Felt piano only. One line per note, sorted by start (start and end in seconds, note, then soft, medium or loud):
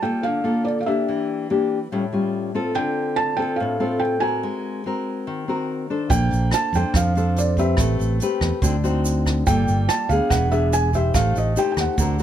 0.03 0.22 G5 medium
0.23 0.62 F5 medium
0.65 0.78 D5 medium
0.81 0.87 F5 medium
0.86 1.45 E5 medium
2.75 3.14 G5 medium
3.16 3.38 A5 loud
3.37 3.59 G5 medium
3.56 4.01 F5 medium
4.00 4.22 G5 medium
4.20 4.80 G#5 medium
6.10 6.49 G5 loud
6.54 6.75 A5 loud
6.76 6.96 G5 medium
6.96 7.38 F5 medium
7.38 7.59 D5 medium
7.60 8.17 E5 medium
9.47 9.90 G5 loud
9.89 10.08 A5 loud
10.09 10.29 F5 medium
10.30 10.52 F#5 medium
10.52 10.73 E5 medium
10.73 10.94 G#5 medium
10.95 11.14 E5 medium
11.14 11.34 F5 loud
11.38 11.56 D#5 medium
11.59 11.70 G5 medium
11.72 11.78 G5 medium
11.80 12.23 F#5 medium